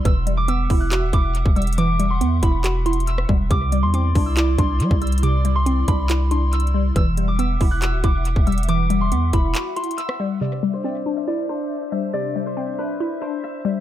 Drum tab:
HH |x-----------x-----------x-----------o-----------x-----------x-----------x-----------x--x--x--x--|x-----------x-----------x-----------x-----------x-----------x---x---x---x-----------------------|x-----------x-----------x-----------o-----------x-----------x-----------x-----------x--x--x--x--|x-----------x-----------x-----------x-----------x-----------x-----------x---x---x---------------|
CP |------------------------------------------------x-----------------------------------------------|------------------------------------------------x-----------------------------------------------|------------------------------------------------x-----------------------------------------------|------------------------------------------------x-----------------------------------------------|
SD |------------------------------------------------------------------------------------------------|------------------------------------------------------------------------------r-----------------|------------------------------------------------------------------------------------------------|------------------------------------------------------------------------------------------------|
BD |o-----------------------------------o-----------------------o-----------------o-----------------|------------------------------------o-----------------------------------------------o-----------|o-----------------------------------o-----------------------o-----------------o-----------------|------------------------------------o-----------------------------------------------------------|

HH |x-----------x-----------x-----------o-----------x-----------x-----------x-----------x--x--x--x--|x-----------x-----------x-----------x-----------x-----------x---x---x---x-----------------------|------------------------------------------------------------------------------------------------|------------------------------------------------------------------------------------------------|
CP |------------------------------------------------x-----------------------------------------------|------------------------------------------------x-----------------------------------------------|------------------------------------------------------------------------------------------------|------------------------------------------------------------------------------------------------|
SD |------------------------------------------------------------------------------------------------|------------------------------------------------------------------------------r-----------------|------------------------------------------------------------------------------------------------|------------------------------------------------------------------------------------------------|
BD |o-----------------------------------o-----------------------o-----------------o-----------------|------------------------------------o-----------------------------------------------------------|------------------------------------------------------------------------------------------------|------------------------------------------------------------------------------------------------|